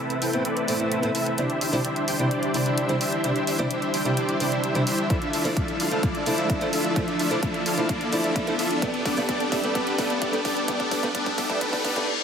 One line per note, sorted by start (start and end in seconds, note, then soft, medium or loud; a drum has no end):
0.00 1.34 C3 medium
0.00 1.34 A3 medium
0.00 0.19 C4 medium
0.00 0.19 E4 medium
0.00 8.78 E4 medium
0.00 0.19 A4 medium
0.00 0.19 B4 medium
0.00 1.34 B4 medium
0.00 0.19 E5 medium
0.00 1.34 E5 medium
0.00 riser medium
0.10 closed hi-hat soft
0.22 0.31 C4 medium
0.22 0.31 E4 medium
0.22 0.31 A4 medium
0.22 0.31 B4 medium
0.22 0.31 G5 loud
0.22 open hi-hat loud
0.33 0.42 A2 medium
0.33 0.42 A3 medium
0.33 0.42 B3 medium
0.33 0.43 C4 medium
0.33 0.43 E4 medium
0.33 0.43 A4 medium
0.33 0.43 B4 medium
0.33 0.43 G5 medium
0.33 closed hi-hat soft
0.45 0.65 C4 medium
0.45 0.65 E4 medium
0.45 0.66 A4 medium
0.45 0.65 B4 medium
0.45 0.66 D5 loud
0.45 closed hi-hat medium
0.57 closed hi-hat soft
0.68 1.00 A2 medium
0.68 1.00 A3 medium
0.68 1.00 B3 medium
0.68 0.78 C4 medium
0.68 1.00 C4 medium
0.68 0.78 E4 medium
0.68 1.01 E4 medium
0.68 0.78 A4 medium
0.68 0.78 B4 medium
0.68 0.78 D5 medium
0.68 open hi-hat loud
0.80 0.90 C4 medium
0.80 0.90 E4 medium
0.80 0.90 A4 medium
0.80 0.90 B4 medium
0.80 0.90 E5 loud
0.80 closed hi-hat soft
0.91 1.12 C4 medium
0.91 1.12 E4 medium
0.91 1.12 A4 medium
0.91 1.12 B4 medium
0.91 1.12 E5 medium
0.91 closed hi-hat medium
1.02 1.08 A2 medium
1.02 1.09 A3 medium
1.02 1.09 B3 medium
1.02 1.09 C4 medium
1.02 1.09 E4 loud
1.02 closed hi-hat soft
1.15 1.35 C4 medium
1.15 1.35 E4 medium
1.15 1.35 A4 medium
1.15 1.35 B4 medium
1.15 1.35 E5 loud
1.15 open hi-hat loud
1.26 closed hi-hat soft
1.37 1.43 C3 medium
1.37 1.44 G3 medium
1.37 5.06 G3 medium
1.37 1.44 C4 medium
1.37 1.59 D4 medium
1.37 12.23 D4 medium
1.37 1.44 D4 medium
1.37 1.59 E4 medium
1.37 1.44 E4 medium
1.37 1.59 G4 medium
1.37 1.59 C5 medium
1.37 5.06 C5 medium
1.37 3.22 D5 medium
1.37 1.59 E5 medium
1.37 closed hi-hat medium
1.50 closed hi-hat soft
1.61 1.71 D4 medium
1.61 1.71 E4 medium
1.61 1.71 G4 medium
1.61 1.71 C5 medium
1.61 1.71 E5 loud
1.61 open hi-hat loud
1.72 1.78 C3 medium
1.72 1.78 G3 medium
1.72 1.79 C4 medium
1.72 1.83 D4 medium
1.72 1.79 D4 medium
1.72 1.83 E4 medium
1.72 1.79 E4 loud
1.72 1.83 G4 medium
1.72 1.83 C5 medium
1.72 1.83 D5 loud
1.72 open hi-hat medium
1.85 2.05 D4 medium
1.85 2.05 E4 medium
1.85 2.05 G4 medium
1.85 2.05 C5 medium
1.85 2.05 E5 medium
1.85 closed hi-hat medium
1.96 closed hi-hat soft
2.08 2.17 D4 medium
2.08 2.17 E4 medium
2.08 2.17 G4 medium
2.08 2.17 C5 medium
2.08 2.17 G5 loud
2.08 open hi-hat loud
2.19 2.28 C3 medium
2.19 2.28 G3 medium
2.19 2.28 C4 medium
2.19 2.29 D4 medium
2.19 2.29 E4 medium
2.19 2.29 G4 medium
2.19 2.29 C5 medium
2.19 2.29 G5 medium
2.19 closed hi-hat soft
2.31 2.52 D4 loud
2.31 2.52 E4 medium
2.31 2.52 G4 medium
2.31 2.52 C5 medium
2.31 2.52 D5 loud
2.31 closed hi-hat medium
2.43 closed hi-hat soft
2.54 2.86 C3 medium
2.54 2.86 G3 medium
2.54 2.86 C4 medium
2.54 2.64 D4 medium
2.54 2.87 D4 medium
2.54 2.64 E4 medium
2.54 2.87 E4 medium
2.54 2.64 G4 medium
2.54 2.64 C5 medium
2.54 2.64 D5 medium
2.54 open hi-hat loud
2.66 2.76 D4 medium
2.66 2.76 E4 medium
2.66 2.76 G4 medium
2.66 2.76 C5 medium
2.66 2.76 E5 medium
2.66 closed hi-hat soft
2.78 2.98 D4 medium
2.78 2.98 E4 medium
2.78 2.98 G4 medium
2.78 2.98 C5 medium
2.78 2.98 E5 medium
2.78 closed hi-hat medium
2.88 2.94 C3 medium
2.88 2.95 G3 medium
2.88 2.95 C4 medium
2.88 2.95 D4 medium
2.88 2.95 E4 loud
2.88 closed hi-hat soft
3.01 3.21 D4 medium
3.01 3.21 E4 medium
3.01 3.21 G4 medium
3.01 3.21 C5 medium
3.01 3.21 E5 loud
3.01 open hi-hat loud
3.12 closed hi-hat soft
3.23 3.29 C3 medium
3.23 3.30 G3 medium
3.23 3.30 C4 medium
3.23 3.45 D4 medium
3.23 3.30 D4 medium
3.23 3.45 E4 medium
3.23 3.30 E4 medium
3.23 3.45 G4 medium
3.23 3.45 C5 medium
3.23 5.08 E5 medium
3.23 3.45 E5 medium
3.23 closed hi-hat medium
3.36 closed hi-hat soft
3.47 3.57 D4 medium
3.47 3.57 E4 medium
3.47 3.57 G4 medium
3.47 3.57 C5 medium
3.47 3.57 E5 loud
3.47 open hi-hat loud
3.58 3.64 C3 loud
3.58 3.64 G3 medium
3.58 3.65 C4 medium
3.58 3.69 D4 medium
3.58 3.65 D4 medium
3.58 3.69 E4 medium
3.58 3.65 E4 loud
3.58 3.69 G4 medium
3.58 3.69 C5 medium
3.58 3.69 D5 loud
3.58 closed hi-hat soft
3.71 3.91 D4 medium
3.71 3.91 E4 medium
3.71 3.91 G4 medium
3.71 3.91 C5 medium
3.71 3.91 E5 medium
3.71 closed hi-hat medium
3.82 closed hi-hat soft
3.94 4.03 D4 medium
3.94 4.03 E4 medium
3.94 4.03 G4 medium
3.94 4.03 C5 medium
3.94 4.03 G5 medium
3.94 open hi-hat loud
4.05 4.14 C3 medium
4.05 4.14 G3 medium
4.05 4.14 C4 medium
4.05 4.15 D4 medium
4.05 4.15 E4 medium
4.05 4.15 G4 medium
4.05 4.15 C5 medium
4.05 4.15 G5 medium
4.05 closed hi-hat soft
4.17 4.38 D4 loud
4.17 4.38 E4 medium
4.17 4.38 G4 medium
4.17 4.38 C5 medium
4.17 4.38 D5 loud
4.17 closed hi-hat medium
4.29 closed hi-hat soft
4.40 4.72 C3 medium
4.40 4.72 G3 medium
4.40 4.72 C4 medium
4.40 4.50 D4 medium
4.40 4.73 D4 medium
4.40 4.50 E4 medium
4.40 4.73 E4 medium
4.40 4.50 G4 medium
4.40 4.50 C5 medium
4.40 4.50 D5 medium
4.40 open hi-hat loud
4.52 4.62 D4 medium
4.52 4.62 E4 medium
4.52 4.62 G4 medium
4.52 4.62 C5 medium
4.52 4.62 E5 medium
4.52 closed hi-hat soft
4.64 4.84 D4 medium
4.64 4.84 E4 medium
4.64 4.84 G4 medium
4.64 4.84 C5 medium
4.64 4.84 E5 medium
4.64 closed hi-hat medium
4.75 4.81 C3 medium
4.75 4.81 G3 medium
4.75 4.81 C4 medium
4.75 4.81 D4 medium
4.75 4.81 E4 loud
4.75 closed hi-hat soft
4.87 5.07 D4 medium
4.87 5.07 E4 medium
4.87 5.07 G4 medium
4.87 5.07 C5 medium
4.87 5.07 E5 loud
4.87 open hi-hat loud
4.99 closed hi-hat soft
5.09 5.15 F3 medium
5.09 8.79 F3 medium
5.09 5.16 A3 medium
5.09 5.16 D4 medium
5.09 5.31 E4 medium
5.09 5.16 E4 medium
5.09 5.31 F4 medium
5.09 5.31 A4 medium
5.09 12.23 A4 medium
5.09 12.23 D5 medium
5.09 5.31 E5 medium
5.09 kick loud
5.09 closed hi-hat medium
5.22 closed hi-hat soft
5.33 5.43 D4 medium
5.33 5.43 E4 medium
5.33 5.43 F4 medium
5.33 5.43 A4 medium
5.33 5.43 E5 loud
5.33 open hi-hat loud
5.44 5.50 F3 loud
5.44 5.51 A3 medium
5.44 5.55 D4 medium
5.44 5.51 D4 medium
5.44 5.55 E4 medium
5.44 5.51 E4 loud
5.44 5.55 F4 medium
5.44 5.55 A4 medium
5.44 5.55 D5 loud
5.44 open hi-hat medium
5.57 5.77 D4 medium
5.57 5.77 E4 medium
5.57 5.77 F4 medium
5.57 5.77 A4 medium
5.57 5.77 E5 medium
5.57 kick loud
5.57 closed hi-hat medium
5.68 closed hi-hat soft
5.80 5.89 D4 medium
5.80 5.89 E4 medium
5.80 5.89 F4 medium
5.80 5.89 A4 medium
5.80 5.89 F5 loud
5.80 open hi-hat loud
5.91 6.00 F3 medium
5.91 6.00 A3 medium
5.91 6.01 D4 medium
5.91 6.01 E4 medium
5.91 6.01 F4 medium
5.91 6.01 A4 medium
5.91 6.01 F5 medium
5.91 closed hi-hat soft
6.03 6.24 D4 medium
6.03 6.24 E4 medium
6.03 6.24 F4 medium
6.03 6.24 D5 loud
6.03 kick loud
6.03 closed hi-hat medium
6.15 closed hi-hat soft
6.26 6.58 F3 medium
6.26 6.58 A3 medium
6.26 6.36 D4 medium
6.26 6.59 D4 medium
6.26 6.36 E4 medium
6.26 6.59 E4 medium
6.26 6.36 F4 medium
6.26 6.36 A4 medium
6.26 6.36 D5 medium
6.26 open hi-hat loud
6.38 6.48 D4 medium
6.38 6.48 E4 medium
6.38 6.48 F4 medium
6.38 6.48 A4 medium
6.38 6.48 E5 medium
6.38 closed hi-hat soft
6.50 6.70 D4 medium
6.50 6.70 E4 medium
6.50 6.70 F4 medium
6.50 6.70 A4 medium
6.50 6.70 E5 medium
6.50 kick loud
6.50 closed hi-hat medium
6.61 6.67 F3 medium
6.61 6.67 A3 medium
6.61 6.67 D4 medium
6.61 6.67 E4 loud
6.61 closed hi-hat soft
6.73 6.93 D4 medium
6.73 6.93 E4 medium
6.73 6.93 F4 medium
6.73 6.93 A4 medium
6.73 6.93 E5 loud
6.73 open hi-hat loud
6.85 closed hi-hat soft
6.96 7.02 F3 medium
6.96 7.02 A3 medium
6.96 7.17 D4 medium
6.96 7.02 D4 medium
6.96 7.17 E4 medium
6.96 7.02 E4 medium
6.96 7.17 F4 medium
6.96 7.17 A4 medium
6.96 7.17 E5 medium
6.96 kick loud
6.96 closed hi-hat medium
7.08 closed hi-hat soft
7.19 7.29 D4 medium
7.19 7.29 E4 medium
7.19 7.29 F4 medium
7.19 7.29 A4 medium
7.19 7.29 E5 loud
7.19 open hi-hat loud
7.30 7.36 F3 medium
7.30 7.37 A3 medium
7.30 7.41 D4 medium
7.30 7.37 D4 medium
7.30 7.41 E4 medium
7.30 7.37 E4 loud
7.30 7.41 F4 medium
7.30 7.41 A4 medium
7.30 7.41 D5 loud
7.30 closed hi-hat soft
7.43 7.63 D4 medium
7.43 7.63 E4 medium
7.43 7.63 F4 medium
7.43 7.63 A4 medium
7.43 kick loud
7.43 closed hi-hat medium
7.54 closed hi-hat soft
7.66 7.75 D4 medium
7.66 7.75 E4 medium
7.66 7.75 F4 medium
7.66 7.75 A4 medium
7.66 7.75 F5 loud
7.66 open hi-hat loud
7.77 7.86 F3 medium
7.77 7.86 A3 medium
7.77 7.87 D4 medium
7.77 7.88 D4 medium
7.77 7.88 E4 medium
7.77 7.87 E4 medium
7.77 7.88 F4 medium
7.77 7.88 A4 medium
7.77 7.88 F5 medium
7.77 closed hi-hat soft
7.89 8.10 D4 loud
7.89 8.10 E4 medium
7.89 8.10 F4 medium
7.89 8.10 A4 medium
7.89 8.10 D5 loud
7.89 kick loud
7.89 closed hi-hat medium
8.01 closed hi-hat soft
8.12 8.44 F3 medium
8.12 8.44 A3 medium
8.12 8.22 D4 medium
8.12 8.45 D4 medium
8.12 8.22 E4 medium
8.12 8.45 E4 medium
8.12 8.22 F4 medium
8.12 8.22 A4 medium
8.12 8.22 D5 medium
8.12 open hi-hat loud
8.24 8.34 D4 medium
8.24 8.34 E4 medium
8.24 8.34 F4 medium
8.24 8.34 A4 medium
8.24 8.34 E5 medium
8.24 closed hi-hat soft
8.36 8.56 D4 medium
8.36 8.56 E4 medium
8.36 8.56 F4 medium
8.36 8.56 A4 medium
8.36 8.56 E5 medium
8.36 kick loud
8.36 closed hi-hat medium
8.47 8.53 F3 medium
8.47 8.53 A3 medium
8.47 8.53 D4 medium
8.47 8.53 E4 loud
8.47 closed hi-hat soft
8.59 8.79 D4 medium
8.59 8.79 E4 medium
8.59 8.79 F4 medium
8.59 8.79 A4 medium
8.59 8.79 E5 loud
8.59 open hi-hat loud
8.71 closed hi-hat soft
8.81 8.88 G2 medium
8.81 8.88 G3 medium
8.81 12.23 G3 medium
8.81 8.88 A3 medium
8.81 9.03 B3 medium
8.81 12.23 B3 medium
8.81 8.88 B3 medium
8.81 9.03 D4 medium
8.81 8.88 D4 medium
8.81 9.03 G4 medium
8.81 9.03 A4 medium
8.81 kick loud
8.81 closed hi-hat loud
8.94 closed hi-hat soft
9.05 9.15 B3 medium
9.05 9.15 D4 medium
9.05 9.15 G4 medium
9.05 9.15 A4 medium
9.05 9.15 D5 loud
9.05 kick loud
9.05 open hi-hat loud
9.16 9.22 G2 loud
9.16 9.23 G3 medium
9.16 9.23 A3 medium
9.16 9.27 B3 medium
9.16 9.23 B3 medium
9.16 9.27 D4 medium
9.16 9.23 D4 loud
9.16 9.27 G4 medium
9.16 9.27 A4 medium
9.16 9.27 B4 loud
9.16 open hi-hat medium
9.29 9.49 B3 medium
9.29 9.49 D4 medium
9.29 9.49 G4 medium
9.29 9.49 A4 medium
9.29 9.49 D5 medium
9.29 kick loud
9.29 closed hi-hat medium
9.40 closed hi-hat soft
9.52 9.61 B3 medium
9.52 9.61 D4 medium
9.52 9.61 G4 medium
9.52 9.61 A4 medium
9.52 9.61 E5 loud
9.52 kick loud
9.52 open hi-hat loud
9.63 9.72 G2 medium
9.63 9.72 G3 medium
9.63 9.73 A3 medium
9.63 9.74 B3 medium
9.63 9.73 B3 medium
9.63 9.74 D4 medium
9.63 9.73 D4 medium
9.63 9.74 G4 medium
9.63 9.74 A4 medium
9.63 9.74 E5 medium
9.63 closed hi-hat soft
9.75 9.96 B3 loud
9.75 9.96 D4 medium
9.75 9.96 G4 medium
9.75 9.96 A4 medium
9.75 9.96 B4 loud
9.75 kick loud
9.75 closed hi-hat medium
9.87 closed hi-hat soft
9.98 10.30 G2 medium
9.98 10.30 G3 medium
9.98 10.31 A3 medium
9.98 10.08 B3 medium
9.98 10.31 B3 medium
9.98 10.08 D4 medium
9.98 10.31 D4 medium
9.98 10.08 G4 medium
9.98 10.08 A4 medium
9.98 10.08 B4 medium
9.98 kick loud
9.98 open hi-hat loud
10.10 10.20 B3 medium
10.10 10.20 D4 medium
10.10 10.20 G4 medium
10.10 10.20 A4 medium
10.10 10.20 D5 medium
10.10 closed hi-hat soft
10.22 10.42 B3 medium
10.22 10.42 D4 medium
10.22 10.42 G4 medium
10.22 10.42 A4 medium
10.22 10.42 D5 medium
10.22 kick loud
10.22 closed hi-hat medium
10.33 10.39 G2 medium
10.33 10.39 G3 medium
10.33 10.39 A3 medium
10.33 10.39 B3 medium
10.33 10.39 D4 loud
10.33 closed hi-hat soft
10.45 10.66 B3 medium
10.45 10.66 D4 medium
10.45 10.66 G4 medium
10.45 10.66 A4 medium
10.45 10.66 D5 loud
10.45 kick loud
10.45 open hi-hat loud
10.57 closed hi-hat soft
10.67 10.74 G2 medium
10.67 10.74 G3 medium
10.67 10.74 A3 medium
10.67 10.89 B3 medium
10.67 10.74 B3 medium
10.67 10.89 D4 medium
10.67 10.74 D4 medium
10.67 10.89 G4 medium
10.67 10.89 A4 medium
10.67 10.89 D5 medium
10.67 kick loud
10.67 closed hi-hat loud
10.80 kick medium
10.80 closed hi-hat soft
10.91 11.01 B3 loud
10.91 11.01 D4 medium
10.91 11.01 G4 medium
10.91 11.01 A4 medium
10.91 11.01 D5 loud
10.91 kick loud
10.91 open hi-hat loud
11.02 11.08 G2 loud
11.02 11.09 G3 medium
11.02 11.09 A3 medium
11.02 11.13 B3 medium
11.02 11.09 B3 medium
11.02 11.13 D4 medium
11.02 11.09 D4 loud
11.02 11.13 G4 medium
11.02 11.13 A4 medium
11.02 11.13 B4 loud
11.02 kick medium
11.02 closed hi-hat soft
11.15 11.35 B3 medium
11.15 11.35 D4 medium
11.15 11.35 G4 medium
11.15 11.35 A4 medium
11.15 11.35 D5 medium
11.15 kick loud
11.15 closed hi-hat loud
11.26 kick medium
11.26 closed hi-hat soft
11.38 11.47 B3 medium
11.38 11.47 D4 medium
11.38 11.47 G4 medium
11.38 11.47 A4 medium
11.38 11.47 E5 medium
11.38 kick loud
11.38 open hi-hat loud
11.49 11.58 G2 medium
11.49 11.59 G3 medium
11.49 11.59 A3 medium
11.49 11.60 B3 medium
11.49 11.59 B3 medium
11.49 11.60 D4 medium
11.49 11.59 D4 medium
11.49 11.60 G4 medium
11.49 11.60 A4 medium
11.49 11.60 E5 medium
11.49 kick loud
11.49 closed hi-hat soft
11.61 11.82 B3 loud
11.61 11.82 D4 medium
11.61 11.82 G4 medium
11.61 11.82 A4 medium
11.61 11.82 B4 loud
11.61 kick loud
11.61 closed hi-hat loud
11.61 reverse cymbal medium
11.73 kick medium
11.73 open hi-hat medium
11.85 11.94 B3 medium
11.85 11.94 D4 medium
11.85 11.94 G4 medium
11.85 11.94 A4 medium
11.85 11.94 B4 medium
11.85 kick loud
11.85 open hi-hat loud
11.95 12.07 G2 medium
11.95 12.08 G3 medium
11.95 12.08 A3 medium
11.95 12.06 B3 medium
11.95 12.08 B3 medium
11.95 12.06 D4 medium
11.95 12.08 D4 medium
11.95 12.06 G4 medium
11.95 12.06 A4 medium
11.95 12.06 D5 loud
11.95 kick medium
11.95 closed hi-hat soft